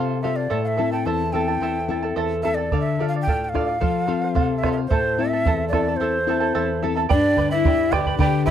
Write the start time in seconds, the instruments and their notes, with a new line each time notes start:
Already playing: nylon-string guitar C3 C4 F4 A4, charango A4 C5 F5, quena F5
0.22 nylon-string guitar C4 F4 A4, charango A4 C5 F5, quena E5
0.36 charango C5 F5, quena D5
0.50 nylon-string guitar A2, charango E4 A4 C5 E5 A5
0.64 quena E5 F5
0.77 nylon-string guitar C4 E4 A4, charango E4 A4 E5 A5
0.92 charango E4 A4 A5, quena G5
1.05 nylon-string guitar E2, charango E4 A4 C5 E5 A5, quena A5
1.33 nylon-string guitar C4 E4 A4, charango E4 A4 E5 A5, quena G5
1.48 charango E4 A4 A5
1.61 nylon-string guitar E2, charango E4 A4 C5 E5 A5
1.88 nylon-string guitar C4 E4 A4, charango E4 A4 E5 A5
2.03 charango E4 A4 A5
2.16 nylon-string guitar E2, charango E4 A4 C5 E5 A5
2.43 nylon-string guitar C4 E4 A4, charango E4 A4 E5 A5, quena E5
2.55 charango E4 A4 A5, quena D5
2.72 nylon-string guitar D3, charango A4 D5 F5, bombo low
2.80 quena E5
2.99 nylon-string guitar D4 F4 A4, charango A4 D5 F5
3.08 quena F5
3.15 charango D5 F5
3.22 quena G5
3.27 nylon-string guitar A2, charango A4 D5 F5, bombo low
3.44 quena G5
3.49 quena F5
3.54 nylon-string guitar D4 F4 A4, charango A4 D5 F5, bombo rim, bombo low
3.67 charango D5 F5
3.81 nylon-string guitar F3, charango A4 C5 F5, bombo low
4.07 nylon-string guitar C4 F4 A4, charango A4 C5 F5
4.22 charango C5 F5
4.35 nylon-string guitar C3, charango A4 C5 F5, bombo low
4.58 quena E5
4.63 nylon-string guitar C4 F4 A4, charango A4 C5 F5, bombo rim, bombo low
4.72 quena E5
4.77 charango C5 F5
4.88 nylon-string guitar A2, charango E4 A4 C5 E5, quena C5, bombo low
4.92 charango A5
5.18 nylon-string guitar C4 E4 A4, charango E4 A4 E5 A5
5.29 quena E5, charango A5
5.34 charango E4 A4
5.45 nylon-string guitar E2, charango E4 A4 C5 E5 A5, bombo low
5.68 nylon-string guitar C4, quena D5
5.73 nylon-string guitar E4 A4, charango E4 A4 E5 A5, bombo rim, bombo low
5.88 charango E4 A4 A5
5.97 nylon-string guitar E2, quena C5, charango C5
6.01 charango E4 A4 E5 A5
6.27 nylon-string guitar C4 E4 A4, charango E4 A4 E5 A5
6.40 charango E4 A4 A5
6.55 nylon-string guitar E2, charango E4 A4 C5 E5 A5
6.82 nylon-string guitar C4 E4 A4, charango E4 A4 E5 A5
6.97 charango E4 A4 A5
7.09 nylon-string guitar G2, pan flute D4, charango G4 B4 D5 G5 B5, quena D5, bombo low
7.37 nylon-string guitar D3, charango B4 D5 G5 B5, bombo low
7.51 pan flute E4, charango B4 D5 B5, quena E5
7.65 nylon-string guitar D4, charango G4 B4 D5 G5 B5, bombo low
7.91 nylon-string guitar D3, pan flute G4, charango B4 D5 G5 B5, quena G5, bombo rim, bombo low
8.06 charango B4 D5 B5, bombo low
8.18 nylon-string guitar D3, charango G4 B4 D5 G5 B5, pan flute G4, quena G5, bombo low
8.46 pan flute E4, nylon-string guitar B4, charango B4 D5 G5 B5, quena E5, bombo low